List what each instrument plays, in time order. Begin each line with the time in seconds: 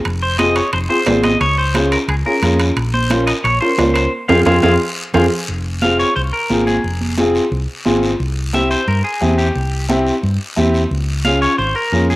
0.05 fingered electric bass F1, high timbale, long guiro
0.23 clean electric guitar C5
0.39 upright piano C4 F4 G#4, clean electric guitar D#5, high conga, high timbale, short guiro
0.56 clean electric guitar C#5, high timbale, short guiro
0.73 fingered electric bass F1, clean electric guitar C5, high conga, high timbale, long guiro
0.89 upright piano C4 F4 G#4, clean electric guitar C5
1.06 fingered electric bass G#1, upright piano C4 F4 G#4, high conga, high timbale, low timbale, short guiro
1.24 clean electric guitar D#5, high conga, high timbale, short guiro
1.41 fingered electric bass C#2, clean electric guitar C#5, high conga, high timbale, long guiro
1.58 clean electric guitar C5
1.74 upright piano C#4 F4 G#4, high conga, high timbale, short guiro
1.92 clean electric guitar A#4, high timbale, short guiro
2.08 fingered electric bass C#2, clean electric guitar G#4, high conga, high timbale, long guiro
2.26 upright piano C#4 F4 G#4, clean electric guitar A#4
2.42 fingered electric bass F2, upright piano C#4 F4 G#4, high conga, high timbale, short guiro
2.60 high timbale, short guiro
2.76 fingered electric bass A#1, high conga, high timbale, long guiro
2.94 clean electric guitar C5, high conga
3.10 upright piano C#4 F4 A#4, high conga, high timbale, short guiro
3.27 clean electric guitar D#5, high timbale, short guiro
3.44 fingered electric bass A#1, clean electric guitar C#5, high conga, high timbale, long guiro
3.61 upright piano C#4 F4 A#4, clean electric guitar C5
3.78 fingered electric bass C#2, upright piano C#4 F4 A#4, high conga, high timbale, low timbale, short guiro
3.94 clean electric guitar C5, high timbale, short guiro
4.28 fingered electric bass F2, upright piano C4 F4 G#4, clean electric guitar G#4 C5 F5, low conga, high timbale, long guiro
4.46 fingered electric bass F2, upright piano C4 F4 G#4, clean electric guitar G#4 C5 F5, low conga, high timbale, long guiro
4.63 fingered electric bass F2, upright piano C4 F4 G#4, clean electric guitar G#4 C5 F5, low conga, high timbale, long guiro
5.14 fingered electric bass F2, upright piano C4 F4 G#4, clean electric guitar G#4 C5 F5, low conga, high timbale, long guiro
5.48 fingered electric bass F1, high conga, long guiro
5.82 upright piano C4 F4 G#4, clean electric guitar F5, high conga, short guiro
5.99 clean electric guitar C#5, short guiro
6.16 fingered electric bass C2, clean electric guitar C5, high conga, long guiro
6.33 clean electric guitar A#4
6.50 fingered electric bass G#1, upright piano C4 F4 G#4, high conga, short guiro
6.67 clean electric guitar G#4, high conga, short guiro
6.84 fingered electric bass F1, long guiro
7.01 high conga
7.17 upright piano C4 F4 G#4, high conga, short guiro
7.35 short guiro
7.52 fingered electric bass C2, high conga, long guiro
7.85 fingered electric bass G#1, upright piano C4 F4 G#4, high conga, short guiro
8.03 short guiro
8.20 fingered electric bass C2, high conga, long guiro
8.53 upright piano C4 E4 G4, clean electric guitar E5, high conga, short guiro
8.71 clean electric guitar C5, short guiro
8.88 fingered electric bass G2, clean electric guitar A#4, high conga, long guiro
9.04 clean electric guitar G#4
9.21 fingered electric bass E2, upright piano C4 E4 G4, high conga, short guiro
9.38 clean electric guitar G4, short guiro
9.55 fingered electric bass C2, high conga, long guiro
9.89 upright piano C4 E4 G4, high conga, short guiro
10.06 short guiro
10.23 fingered electric bass G2, high conga, long guiro
10.57 fingered electric bass E2, upright piano C4 E4 G4, high conga, short guiro
10.74 short guiro
10.91 fingered electric bass C#2, long guiro
11.25 upright piano C#4 F4 G#4, clean electric guitar F5, high conga, short guiro
11.42 clean electric guitar C#5, short guiro
11.58 fingered electric bass G#1, clean electric guitar C5, high conga, long guiro
11.76 clean electric guitar A#4
11.92 fingered electric bass F2, upright piano C#4 F4 G#4, high conga, short guiro
12.10 clean electric guitar G#4, high conga, short guiro